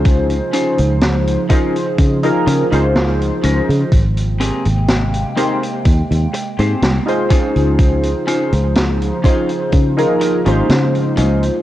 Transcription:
Already playing: fingered electric bass C#2, ambient pad C#3 F3 D#4 C5, clean electric guitar C#4 D#4 F4 C5, synth keys D#4 F4 G#4 C5
0.05 kick, closed hi-hat
0.30 closed hi-hat
0.53 clean electric guitar C#4 D#4 F4 C5, closed hi-hat
0.78 fingered electric bass C#2, closed hi-hat
1.01 snare, closed hi-hat
1.27 closed hi-hat
1.49 clean electric guitar C#4 D#4 F4 A#4, synth keys D#4 F4 G#4 C5, ambient pad F4, kick, closed hi-hat
1.76 closed hi-hat
1.98 fingered electric bass C#3, kick, closed hi-hat
2.23 synth keys D#4 F4 G#4 A#4, closed hi-hat
2.47 fingered electric bass C#3, muted clean electric guitar stroke, closed hi-hat
2.71 fingered electric bass C#2, clean electric guitar C#4 D#4 F4 C5, synth keys D#4 F4 G#4 C5, closed hi-hat
2.95 snare, closed hi-hat
3.21 closed hi-hat
3.43 fingered electric bass C#2, clean electric guitar C#4 D#4 F4 A#4, closed hi-hat
3.69 fingered electric bass C#3, closed hi-hat
3.92 fingered electric bass G#1, ambient pad C3 G#3 A#3 G5, kick, closed hi-hat
4.17 closed hi-hat
4.40 clean electric guitar C4 G4 G#4 A#4, closed hi-hat
4.65 fingered electric bass G#1, closed hi-hat
4.88 snare, closed hi-hat
5.14 closed hi-hat
5.36 clean electric guitar C4 G4 G#4 C5, synth keys D#4 G4 A#4 C5, closed hi-hat
5.63 closed hi-hat
5.85 fingered electric bass D#2, kick, closed hi-hat
6.11 fingered electric bass D#2, closed hi-hat
6.34 muted clean electric guitar stroke, closed hi-hat
6.59 fingered electric bass G#2, clean electric guitar C4 G4 G#4 C5, closed hi-hat
6.82 fingered electric bass C2, snare, closed hi-hat
7.06 synth keys D#4 F4 G#4 C5, closed hi-hat
7.30 ambient pad C#3 F3 D#4 C5, clean electric guitar C#4 D#4 F4 C5, kick, closed hi-hat
7.56 fingered electric bass C#2, closed hi-hat
7.79 kick, closed hi-hat
8.03 closed hi-hat
8.27 clean electric guitar C#4 D#4 F4 C5, closed hi-hat
8.53 fingered electric bass C#2, closed hi-hat
8.75 snare, closed hi-hat
9.02 closed hi-hat
9.24 ambient pad A#3, clean electric guitar C#4 D#4 F4 G#4, synth keys D#4 F4 G#4 C5, kick, closed hi-hat
9.49 closed hi-hat
9.72 fingered electric bass C#3, kick, closed hi-hat
9.97 synth keys D#4 F4 G#4 A#4, closed hi-hat
10.21 muted clean electric guitar stroke, closed hi-hat
10.45 fingered electric bass G#1, synth keys G#3 D#4 F4 C5, clean electric guitar C#4 D#4 F4 G4, closed hi-hat
10.69 fingered electric bass C#3, snare, closed hi-hat
10.95 closed hi-hat
11.17 fingered electric bass C#2, clean electric guitar C#4 D#4 F4 D#5, closed hi-hat
11.43 closed hi-hat

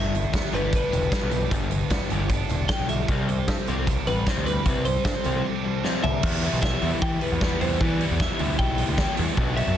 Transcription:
Already playing: picked electric bass G1, overdriven electric guitar G2 D3 G3, distorted electric guitar G2, clean electric guitar E5
0.15 overdriven electric guitar G2 D3, closed hi-hat
0.33 picked electric bass D2, overdriven electric guitar G2 D3, distorted electric guitar B3, kick, snare, closed hi-hat, tambourine
0.46 snare
0.53 picked electric bass G1, overdriven electric guitar G2 D3 G3, distorted electric guitar G4, clean electric guitar B4, closed hi-hat, tambourine
0.73 overdriven electric guitar G2 D3, distorted electric guitar D4, clean electric guitar B4, kick, closed hi-hat, tambourine
0.92 picked electric bass E1, overdriven electric guitar G2 D3, distorted electric guitar G3, closed hi-hat, tambourine
1.12 overdriven electric guitar G2 D3 G3, distorted electric guitar B3, kick, snare, closed hi-hat, tambourine
1.23 picked electric bass B1
1.31 overdriven electric guitar G2 D3, distorted electric guitar G4, closed hi-hat, tambourine
1.51 picked electric bass G1, overdriven electric guitar G2 D3 G3, distorted electric guitar G2, kick, closed hi-hat, tambourine
1.71 overdriven electric guitar G2 D3, closed hi-hat
1.90 picked electric bass D2, overdriven electric guitar G2 D3, distorted electric guitar B3, kick, snare, closed hi-hat, tambourine
2.00 tambourine
2.10 picked electric bass G1, overdriven electric guitar G2 D3 G3, distorted electric guitar G4, closed hi-hat
2.29 overdriven electric guitar G2 D3, distorted electric guitar D4, kick, closed hi-hat, tambourine
2.49 picked electric bass E1, overdriven electric guitar G2 D3, distorted electric guitar G3, closed hi-hat, tambourine
2.68 overdriven electric guitar G2 D3 G3, distorted electric guitar B3, clean electric guitar G5, kick, snare, closed hi-hat, tambourine
2.79 picked electric bass B1
2.89 overdriven electric guitar G2 D3, distorted electric guitar G4, clean electric guitar E5, closed hi-hat, tambourine
3.08 picked electric bass C2, overdriven electric guitar C3 G3 C4, distorted electric guitar C3, clean electric guitar D5, kick, closed hi-hat, tambourine
3.28 overdriven electric guitar C3 G3, clean electric guitar C5, closed hi-hat
3.48 picked electric bass G2, overdriven electric guitar C3 G3, distorted electric guitar C4, kick, snare, closed hi-hat, tambourine
3.67 picked electric bass C2, overdriven electric guitar C3 G3 C4, distorted electric guitar G4, closed hi-hat, tambourine
3.87 overdriven electric guitar C3 G3, distorted electric guitar D4, kick, closed hi-hat, tambourine
4.07 picked electric bass A1, overdriven electric guitar C3 G3, distorted electric guitar G3, clean electric guitar B4, closed hi-hat, tambourine
4.18 tambourine
4.26 overdriven electric guitar C3 G3 C4, distorted electric guitar C4, clean electric guitar C5, kick, snare, closed hi-hat, tambourine
4.36 picked electric bass D2
4.46 overdriven electric guitar C3 G3, distorted electric guitar G4, clean electric guitar B4, closed hi-hat, tambourine
4.65 picked electric bass C2, overdriven electric guitar C3 G3 C4, distorted electric guitar C3, kick, closed hi-hat, tambourine
4.77 tambourine
4.85 overdriven electric guitar C3 G3, clean electric guitar C5, closed hi-hat, tambourine
4.96 tambourine
5.05 picked electric bass G2, overdriven electric guitar C3 G3, distorted electric guitar C4, clean electric guitar C5, kick, snare, closed hi-hat, tambourine
5.24 picked electric bass C2, overdriven electric guitar C3 G3 C4, distorted electric guitar G4, closed hi-hat, tambourine
5.36 tambourine
5.45 overdriven electric guitar C3 G3, distorted electric guitar D4
5.65 overdriven electric guitar C3 G3, distorted electric guitar G3
5.84 overdriven electric guitar C3 G3 C4, distorted electric guitar C4, snare
6.04 overdriven electric guitar C3 G3, distorted electric guitar G4, clean electric guitar E5, floor tom
6.23 picked electric bass E2, distorted electric guitar E2 B2 E3 G3 B3, overdriven electric guitar E3 B3 E4 G4, kick, crash
6.27 distorted electric guitar E4
6.43 distorted electric guitar E3 G3 B3 E4, overdriven electric guitar E4 G4, open hi-hat
6.47 overdriven electric guitar B3
6.53 picked electric bass B1
6.62 overdriven electric guitar E3 B3 E4 G4, clean electric guitar E5, kick, snare
6.82 picked electric bass E2, distorted electric guitar E3 G3 B3 E4, overdriven electric guitar B3 E4 G4, open hi-hat
7.02 distorted electric guitar E2 B2 E3 G3 B3 E4, picked electric bass E3, clean electric guitar G5, kick
7.21 distorted electric guitar E3 G3 B3 E4, clean electric guitar B4, open hi-hat
7.32 picked electric bass E2
7.41 overdriven electric guitar E3 B3 E4 G4, distorted electric guitar E3 G3 B3 E4, kick, snare
7.61 picked electric bass E2, distorted electric guitar E3 G3 B3 E4, overdriven electric guitar B3 E4 G4, clean electric guitar C5, open hi-hat
7.80 distorted electric guitar E2 B2 E3 G3 B3 E4, overdriven electric guitar E3 B3 E4 G4, picked electric bass E3, clean electric guitar D5, kick
8.01 distorted electric guitar E3 G3 B3 E4, overdriven electric guitar B3 E4 G4, open hi-hat
8.11 picked electric bass E2
8.20 overdriven electric guitar E3 B3 E4 G4, clean electric guitar E5, kick, snare
8.39 picked electric bass D2, distorted electric guitar E3 G3 B3 E4, overdriven electric guitar B3 E4 G4, open hi-hat
8.58 picked electric bass B1, distorted electric guitar E2 B2 E3 G3 B3 E4, clean electric guitar G5, kick
8.78 distorted electric guitar E3 G3 B3 E4, open hi-hat
8.89 picked electric bass D2
8.97 overdriven electric guitar E3 B3 E4 G4, distorted electric guitar E3 G3 B3 E4, kick, snare
9.17 picked electric bass E2, distorted electric guitar E3 G3 B3 E4, overdriven electric guitar B3 E4 G4, open hi-hat
9.36 picked electric bass B1, overdriven electric guitar B2 F#3 B3 D4 F#4, distorted electric guitar B2 F#3, kick
9.40 distorted electric guitar B3 D4 F#4
9.56 overdriven electric guitar B3 D4 F#4, distorted electric guitar B3 D4 F#4, clean electric guitar E5, open hi-hat
9.68 picked electric bass F#2

